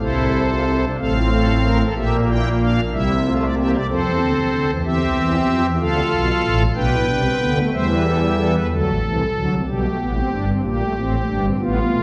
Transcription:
0.00 0.85 C2 medium
0.00 0.85 C3 medium
0.00 0.42 E4 medium
0.00 0.85 A4 medium
0.00 0.85 C5 medium
0.50 0.64 F4 medium
0.66 0.80 E4 medium
0.83 0.97 D4 soft
0.99 1.82 A1 medium
0.99 1.82 A2 medium
0.99 1.82 C4 medium
0.99 1.13 A4 medium
0.99 1.82 F5 medium
1.16 1.29 F4 medium
1.32 1.52 A4 medium
1.64 1.78 A#4 medium
1.80 1.94 A4 medium
1.96 2.80 A#1 medium
1.96 2.80 A#2 medium
1.96 2.80 A#3 medium
1.96 2.16 G4 medium
1.96 2.16 E5 medium
2.29 2.49 E4 medium
2.29 2.49 G5 medium
2.61 2.81 D4 medium
2.61 2.81 F5 medium
2.93 3.75 C2 medium
2.93 3.75 C3 medium
2.93 3.12 G3 medium
2.93 3.13 E4 loud
2.93 3.34 E5 medium
3.25 3.45 A3 medium
3.25 3.45 F4 medium
3.42 3.55 D5 medium
3.57 3.77 A#3 medium
3.57 3.77 G4 medium
3.57 3.71 E5 medium
3.73 3.87 D5 medium
3.89 4.02 F2 medium
3.89 4.02 F3 medium
3.89 4.71 C4 medium
3.89 4.71 A4 medium
3.89 4.71 C5 medium
4.05 4.18 E2 medium
4.05 4.18 E3 medium
4.20 4.34 D2 medium
4.20 4.34 D3 medium
4.36 4.50 C2 medium
4.36 4.50 C3 medium
4.52 4.66 D2 medium
4.52 4.66 D3 medium
4.69 4.82 E2 medium
4.69 4.82 E3 medium
4.84 4.98 E2 medium
4.84 4.98 E3 medium
4.84 5.67 C4 medium
4.84 5.66 G4 medium
4.84 5.67 E5 medium
5.00 5.14 C2 medium
5.00 5.14 C3 medium
5.16 5.36 E2 medium
5.16 5.36 E3 medium
5.48 5.62 F2 medium
5.48 5.62 F3 medium
5.64 5.78 E2 medium
5.64 5.78 E3 medium
5.80 6.00 D2 medium
5.80 6.00 D3 medium
5.80 6.63 F4 medium
5.80 6.63 A4 medium
5.80 6.63 F5 medium
6.12 6.32 B1 medium
6.12 6.32 B2 medium
6.44 6.64 A1 loud
6.44 6.64 A2 loud
6.75 6.95 B1 loud
6.75 6.95 B2 loud
6.75 6.89 D4 medium
6.75 7.58 B4 medium
6.75 7.58 G5 medium
6.92 7.06 E4 medium
7.08 7.28 C2 medium
7.08 7.28 C3 medium
7.08 7.22 D4 medium
7.24 7.38 C4 medium
7.39 7.60 D2 medium
7.39 7.60 D3 medium
7.39 7.54 B3 medium
7.56 7.70 A3 medium
7.72 8.56 E2 medium
7.72 8.56 E3 medium
7.72 8.56 G3 medium
7.72 7.86 C5 medium
7.72 8.56 E5 medium
7.89 8.02 B4 medium
8.04 8.18 A4 medium
8.20 8.34 G4 medium
8.37 8.51 A4 medium
8.53 8.67 B4 medium
8.70 8.84 D2 medium
8.70 8.84 D3 medium
8.70 8.90 F#3 medium
8.70 9.54 A4 medium
8.86 9.00 A1 medium
8.86 9.00 A2 medium
9.03 9.23 C2 medium
9.03 9.23 C3 medium
9.03 9.23 E3 medium
9.35 9.49 D2 medium
9.35 9.49 D3 medium
9.35 9.55 F#3 medium
9.51 9.65 C2 medium
9.51 9.65 C3 medium
9.67 9.87 B1 medium
9.67 9.87 B2 medium
9.67 9.81 G3 medium
9.67 10.50 G4 medium
9.83 9.97 A3 medium
9.99 10.19 A1 medium
9.99 10.19 A2 medium
9.99 10.13 B3 medium
10.15 10.29 C4 medium
10.31 10.51 G1 medium
10.31 10.51 G2 medium
10.31 10.45 D4 medium
10.47 10.61 C4 medium
10.63 10.83 A#1 medium
10.63 10.83 A#2 medium
10.63 10.77 A#3 medium
10.63 11.46 G4 medium
10.79 10.93 A3 medium
10.96 11.16 A1 medium
10.96 11.15 A2 medium
10.96 11.16 C4 medium
11.27 11.47 G1 medium
11.27 11.47 G2 medium
11.27 11.41 D4 medium
11.43 11.57 C4 medium
11.59 11.79 A1 medium
11.59 11.79 A2 medium
11.59 11.79 B3 medium
11.59 12.03 F4 medium
11.91 12.03 B1 medium
11.91 12.03 B2 medium
11.91 12.03 A3 medium

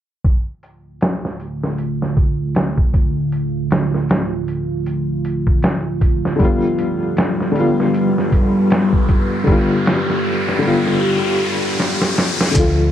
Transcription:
0.23 6.36 D3 medium
0.23 6.36 A3 medium
0.23 9.43 F4 medium
0.23 kick loud
0.23 closed hi-hat medium
0.63 closed hi-hat medium
1.01 snare loud
1.01 closed hi-hat medium
1.25 snare soft
1.40 closed hi-hat medium
1.63 snare soft
1.78 closed hi-hat medium
2.02 snare soft
2.17 kick medium
2.17 closed hi-hat medium
2.55 snare medium
2.55 closed hi-hat medium
2.78 kick medium
2.94 kick medium
2.94 closed hi-hat medium
3.32 closed hi-hat medium
3.71 snare medium
3.71 closed hi-hat medium
3.94 snare soft
4.09 snare loud
4.09 closed hi-hat medium
4.48 closed hi-hat medium
4.86 closed hi-hat medium
5.25 closed hi-hat medium
5.47 kick medium
5.63 snare loud
5.63 closed hi-hat medium
6.01 kick medium
6.01 closed hi-hat medium
6.25 snare soft
6.36 7.50 D3 medium
6.36 7.51 G3 medium
6.36 closed hi-hat medium
6.40 12.52 G3 medium
6.40 7.52 B3 medium
6.40 12.52 B4 medium
6.40 kick loud
6.40 riser medium
6.44 7.54 F4 medium
6.79 closed hi-hat medium
7.17 snare loud
7.17 closed hi-hat medium
7.40 snare soft
7.52 9.42 D3 medium
7.52 9.43 G3 medium
7.56 9.45 B3 medium
7.56 closed hi-hat medium
7.60 9.46 F4 medium
7.80 snare soft
7.94 closed hi-hat medium
8.18 snare soft
8.32 kick medium
8.32 closed hi-hat medium
8.70 snare loud
8.70 closed hi-hat medium
8.93 kick medium
9.08 kick medium
9.08 closed hi-hat medium
9.44 10.57 D3 medium
9.44 10.59 G3 medium
9.44 kick loud
9.44 closed hi-hat medium
9.49 10.60 B3 medium
9.49 10.61 F4 medium
9.49 12.53 G4 medium
9.86 snare medium
9.86 closed hi-hat medium
10.10 snare soft
10.25 closed hi-hat medium
10.49 snare soft
10.59 11.00 D3 medium
10.59 11.01 G3 medium
10.63 11.02 B3 medium
10.63 11.04 F4 medium
10.63 closed hi-hat medium
10.87 snare soft
11.80 snare medium
12.02 snare medium
12.18 snare medium
12.41 snare medium
12.51 12.92 D3 medium
12.51 12.92 F3 medium
12.51 kick loud
12.51 closed hi-hat medium
12.56 12.90 D2 medium
12.56 12.92 A3 medium
12.56 12.92 F4 medium

